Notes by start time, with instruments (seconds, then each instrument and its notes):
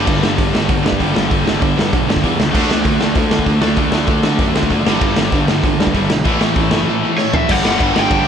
Already playing: distorted electric guitar G2 D3 G3 D4
0.07 picked electric bass G1, distorted electric guitar G2 D3, kick, crash
0.23 picked electric bass G1, distorted electric guitar G2 D3, snare
0.38 picked electric bass G1, distorted electric guitar G2 D3, kick, open hi-hat
0.55 picked electric bass G1, distorted electric guitar G2 D3, snare
0.69 picked electric bass G1, distorted electric guitar G2 D3, kick, open hi-hat
0.86 picked electric bass G2, distorted electric guitar G2 D3, snare
0.92 kick
0.98 picked electric bass G1, distorted electric guitar G2 G3, kick, open hi-hat
1.02 distorted electric guitar G2 D3
1.16 picked electric bass G1, distorted electric guitar G2 D3 G3, snare
1.31 picked electric bass G1, distorted electric guitar G2 D3, kick, open hi-hat
1.47 picked electric bass G1, distorted electric guitar G2 D3, snare
1.62 picked electric bass G1, distorted electric guitar G2 D3, kick, open hi-hat
1.77 distorted electric guitar G2 D3, picked electric bass G2, snare
1.93 picked electric bass B1, distorted electric guitar G2 D3, kick, open hi-hat
2.08 picked electric bass G1, distorted electric guitar G2 D3, snare
2.16 kick
2.24 picked electric bass E2, distorted electric guitar G2 D3 G3, kick, open hi-hat
2.39 picked electric bass C#2, distorted electric guitar G2 D3, snare
2.51 picked electric bass D2, distorted electric guitar D3 A3, kick, crash
2.56 distorted electric guitar D3 A3 D4
2.69 picked electric bass D2, distorted electric guitar D3 A3, snare
2.85 picked electric bass D2, distorted electric guitar D3 A3, kick, open hi-hat
3.01 picked electric bass D2, distorted electric guitar D3 A3, snare
3.15 picked electric bass D2, distorted electric guitar D3 A3, kick, open hi-hat
3.31 picked electric bass D3, distorted electric guitar D3 A3, snare
3.39 kick
3.46 picked electric bass D2, distorted electric guitar D3 A3, kick, open hi-hat
3.61 picked electric bass D2, distorted electric guitar D3 A3 D4, snare
3.76 picked electric bass D2, distorted electric guitar D3 A3 D4, kick, open hi-hat
3.92 picked electric bass D2, distorted electric guitar D3 A3, snare
4.07 picked electric bass D2, distorted electric guitar D3 A3, kick, open hi-hat
4.23 picked electric bass D3, distorted electric guitar D3 A3, snare
4.38 picked electric bass F#2, distorted electric guitar D3 A3, kick, open hi-hat
4.54 picked electric bass D2, distorted electric guitar D3 A3, snare
4.63 kick
4.70 picked electric bass F#1, distorted electric guitar D3 A3, kick, open hi-hat
4.84 picked electric bass G1, distorted electric guitar G2, snare
4.89 distorted electric guitar G2 D3 G3
5.01 picked electric bass G1, distorted electric guitar G2 D3, kick, crash
5.16 picked electric bass G1, distorted electric guitar G2 D3, snare
5.32 picked electric bass G1, distorted electric guitar G2 D3, kick, open hi-hat
5.48 picked electric bass G1, distorted electric guitar G2 D3, snare
5.63 picked electric bass G1, distorted electric guitar G2 D3, kick, open hi-hat
5.79 picked electric bass G2, distorted electric guitar G2 D3, snare
5.87 kick
5.94 picked electric bass G1, distorted electric guitar G2 D3 G3, kick, open hi-hat
6.10 picked electric bass B1, distorted electric guitar G2 D3, snare
6.25 picked electric bass A1, distorted electric guitar A2 E3 A3, kick, open hi-hat
6.40 picked electric bass A1, distorted electric guitar A2 E3, snare
6.55 picked electric bass A1, distorted electric guitar A2 E3, kick, open hi-hat
6.71 picked electric bass F#1, distorted electric guitar A2, snare
6.75 distorted electric guitar E3
6.89 distorted electric guitar A2 E3
7.04 distorted electric guitar A2 E3
7.18 distorted electric guitar A2 E3, overdriven electric guitar C#5, snare
7.32 distorted electric guitar A2 E3 A3, overdriven electric guitar E5, floor tom
7.49 picked electric bass G1, distorted electric guitar G2 D3 G3, overdriven electric guitar F#5, kick, crash
7.65 picked electric bass G1, distorted electric guitar G2 D3 G3, overdriven electric guitar F#5, snare
7.77 picked electric bass G1, distorted electric guitar G2 D3 G3, overdriven electric guitar F#5, kick, ride
7.82 distorted electric guitar G3
7.96 picked electric bass G1, distorted electric guitar G2 D3 G3, overdriven electric guitar G5, snare
8.10 picked electric bass G1, distorted electric guitar G2 D3 G3, kick, ride